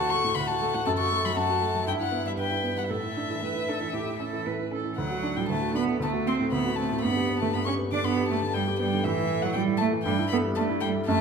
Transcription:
0.00 0.35 D2 medium
0.00 0.19 F#4 soft
0.00 0.35 F#4 medium
0.00 0.12 A5 medium
0.10 0.31 A3 soft
0.10 0.36 C#6 medium
0.24 0.44 A2 soft
0.35 0.85 D2 soft
0.35 0.88 F#4 medium
0.35 0.49 B5 medium
0.48 0.69 F#4 soft
0.48 0.76 A5 medium
0.61 0.81 A3 soft
0.74 0.86 A2 soft
0.74 0.86 F#5 medium
0.86 1.35 F#2 medium
0.86 1.36 A4 medium
0.86 0.91 A5 medium
0.98 1.19 F#4 soft
0.98 1.27 C#6 medium
1.12 1.31 A3 soft
1.25 1.44 F#3 soft
1.25 1.39 B5 medium
1.36 1.85 F#2 soft
1.36 1.86 F#4 medium
1.36 1.87 A5 medium
1.50 1.69 F#4 soft
1.62 1.82 A3 soft
1.75 1.87 F#3 soft
1.87 2.35 G2 soft
1.87 2.36 E4 soft
1.87 1.93 G5 medium
1.99 2.20 E4 soft
1.99 2.25 F#5 medium
2.12 2.32 B3 soft
2.25 2.45 G3 soft
2.25 2.32 E5 soft
2.37 2.88 G2 soft
2.37 2.91 B4 soft
2.37 2.77 G5 soft
2.50 2.71 E4 soft
2.63 2.84 B3 soft
2.77 2.90 G3 soft
2.77 2.83 F#5 soft
2.90 3.41 A2 soft
2.90 3.37 A4 soft
2.90 4.43 E5 medium
3.03 3.24 E4 soft
3.17 3.37 D4 soft
3.30 3.50 E3 soft
3.43 3.92 A2 soft
3.43 3.70 B4 soft
3.55 3.76 E4 soft
3.69 3.89 D4 soft
3.69 3.94 A4 soft
3.80 3.94 E3 soft
3.93 4.45 A2 soft
3.93 4.19 G4 soft
4.06 4.28 E4 soft
4.20 4.41 C#4 soft
4.20 4.48 A4 soft
4.33 4.54 E3 soft
4.46 4.97 A2 soft
4.46 4.73 B4 soft
4.59 4.80 E4 soft
4.71 4.93 C#4 soft
4.71 4.99 A4 soft
4.85 4.98 E3 soft
4.98 5.48 D2 soft
4.98 5.40 F#3 medium
4.98 5.38 F#5 medium
5.11 5.32 F#4 soft
5.23 5.44 D4 soft
5.37 5.58 A2 soft
5.37 5.52 G3 medium
5.37 5.49 G5 soft
5.49 5.98 D2 soft
5.49 5.76 A3 medium
5.49 5.75 A5 medium
5.61 5.83 F#4 soft
5.74 6.01 B3 medium
5.74 5.95 D4 soft
5.74 5.84 B5 medium
5.86 6.00 A2 soft
6.00 6.51 D2 soft
6.00 6.28 A3 medium
6.00 6.10 A5 soft
6.13 6.34 F#4 soft
6.26 6.47 C4 soft
6.26 6.52 C4 medium
6.26 6.35 C6 soft
6.40 6.60 A2 soft
6.52 7.02 D2 soft
6.52 6.78 B3 medium
6.52 6.77 B5 medium
6.65 6.85 F#4 soft
6.76 7.05 A3 medium
6.76 6.98 C4 soft
6.76 7.01 A5 medium
6.91 7.04 A2 soft
7.01 7.52 G2 soft
7.01 7.41 B3 medium
7.01 7.39 B5 medium
7.17 7.36 G4 soft
7.29 7.49 B3 soft
7.40 7.61 D3 soft
7.40 7.46 A3 medium
7.40 7.55 A5 medium
7.54 8.02 G2 soft
7.54 7.60 B3 medium
7.54 7.65 B5 medium
7.66 7.74 C#4 medium
7.66 7.86 G4 soft
7.66 7.74 C#6 medium
7.79 7.99 B3 soft
7.91 8.12 D3 soft
7.91 8.05 D4 medium
7.91 8.06 D6 medium
8.03 8.52 G2 soft
8.03 8.30 B3 medium
8.03 8.29 B5 medium
8.16 8.37 G4 soft
8.29 8.39 A3 medium
8.29 8.50 B3 soft
8.29 8.55 A5 medium
8.42 8.62 D3 soft
8.53 9.03 G2 soft
8.53 8.63 G3 medium
8.53 8.79 G5 medium
8.68 8.88 G4 soft
8.79 9.05 G3 medium
8.79 9.00 B3 soft
8.79 9.05 G5 medium
8.93 9.05 D3 soft
9.04 9.54 A2 medium
9.04 9.45 E3 medium
9.04 9.44 E5 medium
9.19 9.38 E4 soft
9.31 9.51 A3 soft
9.42 9.63 E3 soft
9.42 9.57 F#3 medium
9.42 9.53 F#5 medium
9.53 10.05 A2 soft
9.53 9.80 G3 medium
9.53 9.61 G5 medium
9.68 9.88 E4 soft
9.78 9.89 A3 medium
9.78 9.86 A5 medium
9.82 10.01 A3 soft
9.93 10.06 E3 soft
10.03 10.55 G2 medium
10.03 10.15 G3 medium
10.03 10.28 G5 medium
10.19 10.39 E4 soft
10.28 10.52 A3 soft
10.28 10.40 B3 medium
10.28 10.36 B5 medium
10.44 10.64 G3 soft
10.55 11.05 G2 medium
10.55 10.81 A3 medium
10.55 10.63 A5 medium
10.69 10.90 E4 soft
10.81 10.90 G3 medium
10.81 11.02 A3 medium
10.81 10.89 G5 medium
10.95 11.08 G3 soft
11.06 11.21 F#2 medium
11.06 11.21 A3 medium
11.06 11.21 A5 medium

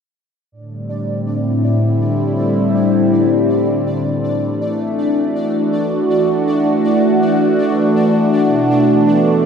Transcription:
0.52 4.49 A2 medium
0.52 9.46 D4 medium
0.52 9.46 D5 medium
0.60 4.49 D3 medium
0.68 4.48 G3 medium
0.75 6.05 C4 medium
1.17 5.32 E4 medium
4.49 9.46 E3 medium
4.53 9.46 A3 medium
4.76 9.46 D4 medium
5.12 9.46 F#4 medium
8.45 9.46 B2 medium

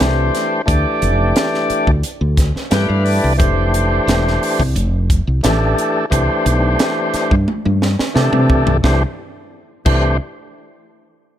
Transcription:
0.00 0.29 C2 medium
0.00 0.61 E3 medium
0.00 0.61 A3 medium
0.00 0.62 D4 medium
0.00 0.62 G4 medium
0.00 0.62 C5 medium
0.00 snare medium
0.00 closed hi-hat medium
0.35 snare soft
0.35 closed hi-hat medium
0.66 0.83 D2 medium
0.66 1.91 E3 medium
0.66 1.91 A3 medium
0.66 1.91 D4 medium
0.66 1.91 G4 medium
0.66 1.91 D5 medium
0.66 kick loud
0.66 closed hi-hat medium
1.02 1.31 F1 medium
1.02 closed hi-hat medium
1.36 snare loud
1.36 closed hi-hat medium
1.54 snare soft
1.70 muted fretless electric bass stroke soft
1.70 closed hi-hat medium
1.87 2.01 D2 medium
1.87 kick medium
2.03 closed hi-hat medium
2.21 2.50 D2 medium
2.37 kick medium
2.37 snare soft
2.37 closed hi-hat medium
2.55 muted fretless electric bass stroke soft
2.55 snare soft
2.71 2.87 G2 medium
2.71 3.33 E3 medium
2.71 3.33 A3 medium
2.71 3.33 D4 medium
2.71 3.34 G4 medium
2.71 3.33 B4 medium
2.71 2.88 G5 medium
2.71 snare medium
2.71 closed hi-hat medium
2.88 3.19 G2 medium
2.88 3.04 F5 medium
3.05 3.37 D5 medium
3.05 open hi-hat medium
3.24 3.38 C2 medium
3.37 3.98 F1 medium
3.37 4.62 E3 medium
3.37 4.63 A3 medium
3.37 4.63 D4 medium
3.37 4.63 G4 medium
3.37 4.63 C5 medium
3.37 kick loud
3.37 closed hi-hat medium
3.74 closed hi-hat medium
4.07 4.37 E1 medium
4.07 snare medium
4.07 closed hi-hat medium
4.27 snare soft
4.43 open hi-hat medium
4.60 4.74 C2 medium
4.60 kick medium
4.75 5.20 F1 loud
4.75 closed hi-hat medium
5.10 kick medium
5.10 closed hi-hat medium
5.27 5.41 C2 medium
5.43 5.73 A1 loud
5.43 6.05 E3 medium
5.43 6.06 A3 medium
5.43 6.05 D4 medium
5.43 6.06 G4 medium
5.43 6.06 A4 medium
5.43 snare medium
5.43 closed hi-hat medium
5.78 closed hi-hat medium
6.10 6.27 C2 medium
6.10 7.35 E3 medium
6.10 7.35 A3 medium
6.10 7.35 D4 medium
6.10 7.35 G4 medium
6.10 7.36 C5 medium
6.10 kick medium
6.10 closed hi-hat medium
6.46 6.75 B1 medium
6.46 closed hi-hat medium
6.79 snare loud
6.79 closed hi-hat medium
7.14 muted fretless electric bass stroke soft
7.14 snare soft
7.14 closed hi-hat medium
7.31 7.45 G2 medium
7.31 kick medium
7.48 high tom medium
7.65 7.95 G2 medium
7.65 high tom soft
7.82 snare medium
7.99 muted fretless electric bass stroke soft
7.99 snare medium
8.14 8.31 C3 medium
8.14 8.77 E3 medium
8.14 8.77 A3 medium
8.14 8.77 D4 medium
8.14 8.78 G4 medium
8.14 8.78 A4 medium
8.14 snare medium
8.33 8.62 C3 medium
8.33 mid tom medium
8.50 kick medium
8.67 8.81 C2 medium
8.67 floor tom medium
8.83 9.03 C2 medium
8.83 9.03 E3 medium
8.83 9.03 A3 medium
8.83 9.03 D4 medium
8.83 9.03 G4 medium
8.83 9.03 C5 medium
8.83 kick medium
8.83 snare medium
9.85 10.17 C2 medium
9.85 10.17 E3 medium
9.85 10.18 A3 medium
9.85 10.17 D4 medium
9.85 10.17 G4 medium
9.85 10.17 C5 medium
9.85 kick loud
9.85 crash medium

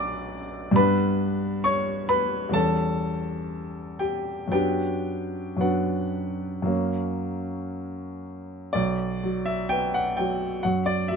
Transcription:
0.00 0.71 B1 medium
0.00 0.72 F#3 soft
0.00 0.73 B3 medium
0.00 0.74 D4 medium
0.00 0.80 D5 medium
0.00 0.80 E5 medium
0.00 0.81 D6 loud
0.00 0.81 E6 medium
0.71 2.49 G2 medium
0.71 2.50 G3 medium
0.71 2.51 B3 medium
0.76 2.52 D4 medium
0.76 1.62 B4 medium
0.76 1.66 B5 loud
1.64 2.07 C#5 medium
1.64 2.10 C#6 medium
2.09 2.53 B4 medium
2.09 2.56 B5 loud
2.49 4.47 E2 medium
2.49 4.48 G3 soft
2.49 4.48 C#4 soft
2.53 3.96 A4 medium
2.53 4.00 A5 medium
3.99 4.50 G4 medium
3.99 4.50 G5 medium
4.48 5.55 F#2 soft
4.48 5.57 F#3 soft
4.48 5.58 B3 soft
4.52 5.58 D4 soft
4.52 5.58 G4 medium
4.52 5.61 G5 medium
5.57 6.61 F#2 medium
5.57 6.63 F#3 soft
5.57 6.65 B3 soft
5.61 6.65 D4 soft
5.61 8.20 F#4 soft
5.61 8.23 F#5 medium
6.62 8.67 F#2 soft
6.62 8.68 F#3 soft
6.62 8.69 A#3 soft
6.68 8.70 C#4 soft
8.73 10.59 B1 medium
8.73 9.45 D5 medium
9.24 9.98 F#3 soft
9.46 9.69 E5 medium
9.69 10.45 B3 medium
9.69 9.93 G5 loud
9.94 10.17 F#5 medium
10.17 10.92 F#3 soft
10.17 10.63 G5 medium
10.63 11.16 F#2 medium
10.63 10.86 F#5 medium
10.86 11.09 D5 medium
11.08 11.16 F#3 soft
11.08 11.16 E5 medium

